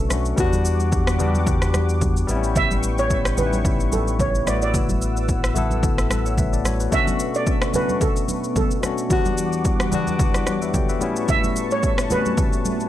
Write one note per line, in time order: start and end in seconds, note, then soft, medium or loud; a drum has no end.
0.00 0.34 B1 medium
0.00 0.09 A3 medium
0.00 0.10 C#4 medium
0.00 0.12 D4 medium
0.00 0.13 F#4 loud
0.00 0.36 A4 medium
0.00 0.39 A4 medium
0.00 0.40 A4 medium
0.00 0.35 B4 medium
0.00 0.35 C#6 medium
0.09 0.32 A3 medium
0.09 0.33 C#4 medium
0.09 0.33 D4 medium
0.09 cross-stick medium
0.09 high conga medium
0.09 shaker medium
0.13 0.34 F#4 medium
0.25 shaker medium
0.36 2.25 E2 medium
0.36 1.03 G3 loud
0.36 2.27 G3 medium
0.36 1.04 B3 medium
0.36 1.05 D4 medium
0.36 1.16 F#4 medium
0.36 1.05 F#4 loud
0.36 2.27 F#5 medium
0.36 2.27 D6 loud
0.36 kick loud
0.36 low conga medium
0.36 shaker medium
0.53 high conga medium
0.53 shaker medium
0.65 shaker medium
0.80 shaker soft
0.92 kick medium
0.92 shaker medium
1.07 cross-stick loud
1.07 shaker medium
1.18 2.07 G3 medium
1.18 2.07 B3 medium
1.18 2.08 D4 medium
1.18 1.28 F#4 medium
1.18 high conga medium
1.18 low conga medium
1.18 shaker medium
1.28 2.12 G4 loud
1.35 high conga medium
1.35 shaker soft
1.47 kick loud
1.47 low conga medium
1.47 shaker medium
1.62 cross-stick medium
1.62 shaker medium
1.74 cross-stick medium
1.74 high conga medium
1.74 shaker medium
1.89 shaker medium
2.01 kick medium
2.01 high conga medium
2.01 low conga medium
2.01 shaker medium
2.17 shaker medium
2.27 4.43 A1 medium
2.27 3.16 G3 medium
2.27 3.16 B3 medium
2.27 2.36 C4 medium
2.27 6.88 B4 medium
2.27 4.45 G5 medium
2.27 4.45 C#6 loud
2.27 high conga medium
2.27 shaker medium
2.31 3.18 E4 loud
2.36 3.20 C#4 medium
2.44 shaker medium
2.56 3.00 E5 loud
2.56 kick loud
2.56 low conga medium
2.56 shaker medium
2.71 high conga medium
2.71 shaker medium
2.83 shaker loud
2.98 3.39 C#5 loud
2.98 shaker soft
3.10 kick medium
3.10 shaker medium
3.25 cross-stick loud
3.25 shaker medium
3.36 4.25 G3 medium
3.36 4.25 B3 medium
3.36 4.26 C#4 medium
3.36 3.46 D#4 medium
3.36 3.94 B4 medium
3.36 high conga medium
3.36 low conga medium
3.36 shaker medium
3.46 4.30 E4 medium
3.53 high conga medium
3.53 shaker soft
3.65 kick loud
3.65 low conga medium
3.65 shaker medium
3.80 shaker medium
3.92 4.21 A4 medium
3.92 high conga medium
3.92 shaker medium
4.08 shaker soft
4.19 4.48 C#5 loud
4.19 kick medium
4.19 high conga medium
4.19 low conga medium
4.19 shaker medium
4.35 shaker medium
4.45 6.88 A1 medium
4.45 5.34 A3 medium
4.45 5.34 B3 medium
4.45 5.35 E4 medium
4.45 5.36 F#4 medium
4.45 4.62 D5 medium
4.45 6.90 F#5 medium
4.45 6.90 E6 loud
4.45 cross-stick medium
4.45 high conga medium
4.45 shaker medium
4.62 5.40 D5 medium
4.62 shaker medium
4.74 kick loud
4.74 low conga medium
4.74 shaker medium
4.89 high conga medium
4.89 shaker medium
5.02 shaker loud
5.17 shaker medium
5.29 kick medium
5.29 shaker medium
5.44 cross-stick loud
5.44 shaker medium
5.54 6.43 A3 medium
5.54 6.44 B3 medium
5.54 6.44 E4 medium
5.54 6.12 A4 loud
5.54 high conga medium
5.54 low conga medium
5.54 shaker medium
5.71 high conga medium
5.71 shaker soft
5.83 kick loud
5.83 low conga medium
5.83 shaker medium
5.98 cross-stick medium
5.98 shaker medium
6.10 6.25 E5 medium
6.10 6.25 A5 medium
6.10 cross-stick medium
6.10 high conga medium
6.10 shaker medium
6.26 6.38 C#5 medium
6.26 6.37 F#5 medium
6.26 shaker soft
6.37 6.52 B4 medium
6.37 6.52 E5 medium
6.37 kick medium
6.37 high conga medium
6.37 low conga medium
6.37 shaker medium
6.53 6.65 A4 medium
6.53 6.64 D5 medium
6.53 shaker medium
6.65 6.80 F#4 medium
6.65 6.79 C#5 medium
6.65 cross-stick medium
6.65 high conga medium
6.65 shaker medium
6.80 6.93 F#4 medium
6.80 7.06 B4 medium
6.80 shaker medium
6.91 7.58 B2 loud
6.91 7.58 A3 medium
6.91 9.08 B3 medium
6.91 7.59 C#4 medium
6.91 7.59 D4 medium
6.91 7.60 F#4 loud
6.91 9.08 A4 medium
6.91 9.08 B4 medium
6.91 7.36 E5 loud
6.91 9.08 C#6 medium
6.91 kick loud
6.91 low conga medium
6.91 shaker medium
7.07 high conga medium
7.07 shaker medium
7.20 shaker loud
7.34 7.76 D5 loud
7.34 shaker soft
7.47 kick loud
7.47 shaker medium
7.62 cross-stick loud
7.62 shaker medium
7.72 8.61 B2 medium
7.72 8.62 A3 medium
7.72 8.62 C#4 medium
7.72 8.62 D4 medium
7.72 8.63 F#4 medium
7.72 8.00 B4 loud
7.72 high conga medium
7.72 low conga medium
7.72 shaker medium
7.89 high conga medium
7.89 shaker soft
8.01 8.53 A4 medium
8.01 kick loud
8.01 low conga medium
8.01 shaker medium
8.16 shaker medium
8.28 high conga medium
8.28 shaker medium
8.44 shaker soft
8.56 9.07 A4 medium
8.56 kick medium
8.56 high conga medium
8.56 low conga medium
8.56 shaker medium
8.71 shaker medium
8.81 9.05 B2 medium
8.81 9.05 A3 medium
8.81 9.06 C#4 medium
8.81 9.06 D4 medium
8.81 9.07 F#4 medium
8.81 cross-stick medium
8.81 high conga medium
8.81 shaker medium
8.98 shaker medium
9.09 9.76 E2 medium
9.09 10.99 E3 medium
9.09 9.77 G3 medium
9.09 10.99 G3 medium
9.09 9.77 B3 medium
9.09 9.78 D4 medium
9.09 9.89 F#4 medium
9.09 9.78 F#4 loud
9.09 10.99 F#5 medium
9.09 10.99 D6 medium
9.09 kick loud
9.09 low conga medium
9.09 shaker medium
9.25 high conga medium
9.25 shaker medium
9.38 shaker loud
9.53 shaker soft
9.65 kick loud
9.65 shaker medium
9.80 cross-stick loud
9.80 shaker medium
9.90 10.79 E2 medium
9.90 10.80 G3 medium
9.90 10.80 B3 medium
9.90 10.81 D4 medium
9.90 high conga medium
9.90 low conga medium
9.90 shaker medium
9.94 10.48 F#4 loud
10.07 high conga medium
10.07 shaker medium
10.19 kick loud
10.19 low conga medium
10.19 shaker medium
10.34 cross-stick medium
10.34 shaker medium
10.47 10.61 C#5 medium
10.47 10.61 F#5 medium
10.47 cross-stick medium
10.47 high conga medium
10.47 shaker medium
10.62 10.74 B4 medium
10.62 10.74 E5 medium
10.62 shaker soft
10.74 10.89 A4 medium
10.74 10.88 D5 medium
10.74 10.88 G5 medium
10.74 kick medium
10.74 high conga medium
10.74 low conga medium
10.74 shaker medium
10.89 11.15 F#4 medium
10.89 11.15 B4 medium
10.89 11.26 E5 medium
10.89 shaker medium
11.00 11.88 A2 medium
11.00 11.89 G3 medium
11.00 12.89 A3 medium
11.00 11.89 B3 medium
11.00 11.90 C#4 medium
11.00 11.90 E4 loud
11.00 12.89 B4 medium
11.00 12.89 A5 medium
11.00 12.89 C#6 loud
11.00 high conga medium
11.00 shaker medium
11.16 shaker medium
11.28 11.73 E5 loud
11.28 kick loud
11.28 low conga medium
11.28 shaker medium
11.44 high conga medium
11.44 shaker medium
11.56 shaker loud
11.71 12.12 C#5 loud
11.71 shaker soft
11.83 kick medium
11.83 shaker medium
11.98 cross-stick loud
11.98 shaker medium
12.09 12.89 A2 medium
12.09 12.89 G3 medium
12.09 12.89 B3 medium
12.09 12.18 C4 medium
12.09 12.89 F#4 medium
12.09 12.89 B4 loud
12.09 high conga medium
12.09 low conga medium
12.09 shaker medium
12.18 12.89 C#4 medium
12.26 high conga medium
12.26 shaker soft
12.38 kick loud
12.38 low conga medium
12.38 shaker medium
12.53 shaker medium
12.65 high conga medium
12.65 shaker medium
12.80 shaker soft